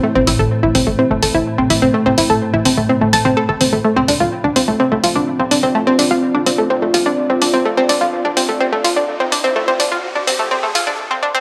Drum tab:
HH |-o-o-o-o|-o-o-o-o|-o-o-o-o|-o-o-o-o|

HH |-o-o-o-o|-o-o-o--|